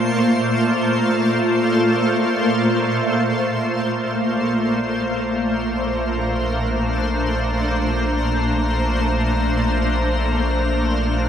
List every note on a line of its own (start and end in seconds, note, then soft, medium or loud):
0.00 11.29 A#2 medium
0.00 11.29 A3 medium
0.00 11.29 A#3 medium
0.00 5.22 F4 medium
0.00 11.29 C5 medium
0.00 3.56 C6 medium
3.54 11.29 A#1 medium
3.54 11.29 A#5 medium
5.26 11.29 D4 medium